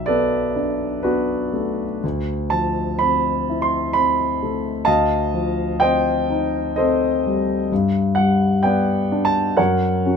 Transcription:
0, 0, Header, 1, 2, 480
1, 0, Start_track
1, 0, Tempo, 970874
1, 1005, Time_signature, 3, 2, 24, 8
1, 1485, Tempo, 938967
1, 5147, End_track
2, 0, Start_track
2, 0, Title_t, "Grand piano"
2, 0, Program_c, 0, 0
2, 0, Control_c, 0, 64, 127
2, 0, Note_on_c, 0, 35, 37
2, 0, Note_on_c, 0, 54, 32
2, 0, Note_on_c, 0, 76, 70
2, 29, Note_on_c, 0, 74, 68
2, 37, Note_on_c, 0, 69, 48
2, 39, Note_on_c, 0, 71, 51
2, 45, Note_on_c, 0, 59, 32
2, 182, Note_off_c, 0, 54, 0
2, 277, Note_on_c, 0, 62, 32
2, 421, Note_off_c, 0, 59, 0
2, 493, Note_off_c, 0, 69, 0
2, 494, Note_off_c, 0, 71, 0
2, 506, Note_off_c, 0, 62, 0
2, 508, Note_on_c, 0, 71, 53
2, 509, Note_off_c, 0, 74, 0
2, 513, Note_on_c, 0, 62, 36
2, 514, Note_on_c, 0, 66, 42
2, 520, Note_on_c, 0, 59, 32
2, 758, Note_on_c, 0, 57, 31
2, 909, Note_off_c, 0, 59, 0
2, 983, Note_off_c, 0, 35, 0
2, 984, Note_off_c, 0, 62, 0
2, 984, Note_off_c, 0, 66, 0
2, 1001, Note_off_c, 0, 71, 0
2, 1004, Note_off_c, 0, 57, 0
2, 1006, Note_on_c, 0, 38, 40
2, 1012, Control_c, 0, 64, 0
2, 1016, Note_off_c, 0, 76, 0
2, 1081, Control_c, 0, 64, 127
2, 1236, Note_on_c, 0, 81, 69
2, 1245, Note_on_c, 0, 53, 33
2, 1476, Note_on_c, 0, 83, 71
2, 1480, Note_off_c, 0, 81, 0
2, 1489, Note_on_c, 0, 60, 35
2, 1631, Note_off_c, 0, 53, 0
2, 1736, Note_on_c, 0, 64, 34
2, 1800, Note_on_c, 0, 84, 64
2, 1804, Note_off_c, 0, 83, 0
2, 1875, Note_off_c, 0, 60, 0
2, 1960, Note_on_c, 0, 83, 73
2, 1965, Note_off_c, 0, 84, 0
2, 1973, Note_on_c, 0, 60, 32
2, 2115, Note_off_c, 0, 64, 0
2, 2213, Note_on_c, 0, 57, 32
2, 2347, Note_off_c, 0, 60, 0
2, 2420, Note_off_c, 0, 38, 0
2, 2428, Note_on_c, 0, 81, 80
2, 2433, Note_on_c, 0, 77, 56
2, 2435, Note_off_c, 0, 83, 0
2, 2435, Note_on_c, 0, 75, 59
2, 2440, Note_on_c, 0, 38, 42
2, 2443, Note_off_c, 0, 57, 0
2, 2446, Control_c, 0, 64, 0
2, 2526, Control_c, 0, 64, 127
2, 2679, Note_on_c, 0, 53, 34
2, 2900, Note_off_c, 0, 77, 0
2, 2901, Note_off_c, 0, 75, 0
2, 2913, Note_on_c, 0, 79, 74
2, 2918, Note_off_c, 0, 81, 0
2, 2919, Note_on_c, 0, 75, 55
2, 2922, Note_on_c, 0, 72, 57
2, 2927, Note_on_c, 0, 60, 34
2, 3072, Note_off_c, 0, 53, 0
2, 3169, Note_on_c, 0, 63, 35
2, 3317, Note_off_c, 0, 60, 0
2, 3390, Note_off_c, 0, 75, 0
2, 3391, Note_off_c, 0, 72, 0
2, 3405, Note_on_c, 0, 75, 57
2, 3407, Note_off_c, 0, 79, 0
2, 3413, Note_on_c, 0, 72, 49
2, 3414, Note_on_c, 0, 69, 45
2, 3423, Note_on_c, 0, 60, 35
2, 3557, Note_off_c, 0, 63, 0
2, 3662, Note_on_c, 0, 55, 37
2, 3801, Note_off_c, 0, 60, 0
2, 3871, Note_off_c, 0, 38, 0
2, 3871, Note_off_c, 0, 69, 0
2, 3871, Note_off_c, 0, 72, 0
2, 3887, Note_off_c, 0, 75, 0
2, 3896, Note_off_c, 0, 55, 0
2, 3896, Note_on_c, 0, 43, 47
2, 3898, Control_c, 0, 64, 0
2, 3970, Control_c, 0, 64, 127
2, 4115, Note_on_c, 0, 78, 67
2, 4130, Note_on_c, 0, 55, 38
2, 4360, Note_off_c, 0, 78, 0
2, 4360, Note_on_c, 0, 79, 59
2, 4365, Note_on_c, 0, 71, 49
2, 4366, Note_on_c, 0, 74, 47
2, 4370, Note_on_c, 0, 59, 36
2, 4513, Note_off_c, 0, 55, 0
2, 4611, Note_on_c, 0, 62, 40
2, 4668, Note_off_c, 0, 71, 0
2, 4668, Note_off_c, 0, 74, 0
2, 4677, Note_on_c, 0, 81, 78
2, 4685, Note_off_c, 0, 79, 0
2, 4754, Note_off_c, 0, 59, 0
2, 4830, Note_off_c, 0, 43, 0
2, 4840, Note_on_c, 0, 78, 56
2, 4842, Note_off_c, 0, 81, 0
2, 4842, Note_on_c, 0, 70, 46
2, 4844, Note_on_c, 0, 73, 49
2, 4849, Note_off_c, 0, 62, 0
2, 4853, Note_on_c, 0, 42, 42
2, 4855, Control_c, 0, 64, 0
2, 4935, Control_c, 0, 64, 127
2, 5090, Note_on_c, 0, 61, 33
2, 5093, Note_on_c, 0, 66, 38
2, 5147, Note_off_c, 0, 42, 0
2, 5147, Note_off_c, 0, 61, 0
2, 5147, Note_off_c, 0, 66, 0
2, 5147, Note_off_c, 0, 70, 0
2, 5147, Note_off_c, 0, 73, 0
2, 5147, Note_off_c, 0, 78, 0
2, 5147, End_track
0, 0, End_of_file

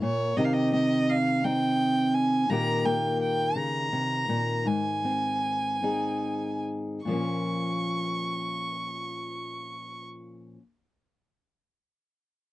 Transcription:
0, 0, Header, 1, 3, 480
1, 0, Start_track
1, 0, Tempo, 706714
1, 253, Time_signature, 6, 3, 24, 8
1, 2173, Tempo, 740741
1, 3613, Tempo, 811908
1, 4573, Tempo, 852273
1, 7660, End_track
2, 0, Start_track
2, 0, Title_t, "Fiddle"
2, 0, Program_c, 0, 110
2, 14, Note_on_c, 0, 73, 69
2, 250, Note_on_c, 0, 75, 74
2, 260, Note_off_c, 0, 73, 0
2, 304, Note_on_c, 0, 77, 61
2, 314, Note_off_c, 0, 75, 0
2, 361, Note_on_c, 0, 75, 77
2, 371, Note_off_c, 0, 77, 0
2, 494, Note_off_c, 0, 75, 0
2, 498, Note_on_c, 0, 75, 76
2, 742, Note_on_c, 0, 77, 82
2, 752, Note_off_c, 0, 75, 0
2, 978, Note_on_c, 0, 79, 79
2, 988, Note_off_c, 0, 77, 0
2, 1454, Note_on_c, 0, 80, 80
2, 1464, Note_off_c, 0, 79, 0
2, 1695, Note_on_c, 0, 82, 94
2, 1706, Note_off_c, 0, 80, 0
2, 1939, Note_on_c, 0, 79, 81
2, 1949, Note_off_c, 0, 82, 0
2, 2176, Note_off_c, 0, 79, 0
2, 2180, Note_on_c, 0, 79, 81
2, 2411, Note_on_c, 0, 82, 78
2, 2421, Note_off_c, 0, 79, 0
2, 3126, Note_on_c, 0, 80, 78
2, 3136, Note_off_c, 0, 82, 0
2, 4327, Note_off_c, 0, 80, 0
2, 4571, Note_on_c, 0, 85, 63
2, 6266, Note_off_c, 0, 85, 0
2, 7660, End_track
3, 0, Start_track
3, 0, Title_t, "Steel-string acoustic guitar"
3, 0, Program_c, 1, 25
3, 0, Note_on_c, 1, 58, 51
3, 13, Note_on_c, 1, 46, 51
3, 227, Note_off_c, 1, 58, 0
3, 248, Note_off_c, 1, 46, 0
3, 250, Note_on_c, 1, 48, 64
3, 254, Note_on_c, 1, 51, 45
3, 258, Note_on_c, 1, 60, 53
3, 263, Note_on_c, 1, 63, 48
3, 267, Note_on_c, 1, 67, 54
3, 491, Note_off_c, 1, 60, 0
3, 499, Note_on_c, 1, 60, 47
3, 975, Note_off_c, 1, 60, 0
3, 983, Note_on_c, 1, 60, 53
3, 984, Note_off_c, 1, 63, 0
3, 986, Note_on_c, 1, 63, 49
3, 1660, Note_off_c, 1, 48, 0
3, 1667, Note_off_c, 1, 60, 0
3, 1690, Note_off_c, 1, 51, 0
3, 1694, Note_on_c, 1, 46, 61
3, 1699, Note_on_c, 1, 51, 47
3, 1704, Note_on_c, 1, 58, 49
3, 1706, Note_off_c, 1, 63, 0
3, 1708, Note_on_c, 1, 63, 48
3, 1712, Note_off_c, 1, 67, 0
3, 1714, Note_on_c, 1, 67, 54
3, 1930, Note_off_c, 1, 58, 0
3, 1938, Note_on_c, 1, 58, 46
3, 2400, Note_off_c, 1, 46, 0
3, 2403, Note_on_c, 1, 49, 50
3, 2638, Note_off_c, 1, 49, 0
3, 2642, Note_on_c, 1, 48, 49
3, 2876, Note_off_c, 1, 48, 0
3, 2879, Note_on_c, 1, 46, 52
3, 3093, Note_off_c, 1, 58, 0
3, 3098, Note_off_c, 1, 63, 0
3, 3100, Note_off_c, 1, 67, 0
3, 3117, Note_on_c, 1, 44, 55
3, 3119, Note_off_c, 1, 46, 0
3, 3369, Note_on_c, 1, 60, 43
3, 3843, Note_off_c, 1, 60, 0
3, 3850, Note_on_c, 1, 60, 40
3, 3857, Note_on_c, 1, 63, 41
3, 3860, Note_on_c, 1, 68, 48
3, 4542, Note_off_c, 1, 44, 0
3, 4545, Note_off_c, 1, 60, 0
3, 4549, Note_off_c, 1, 63, 0
3, 4549, Note_off_c, 1, 68, 0
3, 4576, Note_off_c, 1, 51, 0
3, 4576, Note_on_c, 1, 46, 46
3, 4589, Note_on_c, 1, 53, 45
3, 4598, Note_on_c, 1, 58, 45
3, 4610, Note_on_c, 1, 61, 43
3, 4619, Note_on_c, 1, 65, 39
3, 6547, Note_off_c, 1, 46, 0
3, 6560, Note_off_c, 1, 53, 0
3, 6570, Note_off_c, 1, 58, 0
3, 6581, Note_off_c, 1, 61, 0
3, 6590, Note_off_c, 1, 65, 0
3, 7660, End_track
0, 0, End_of_file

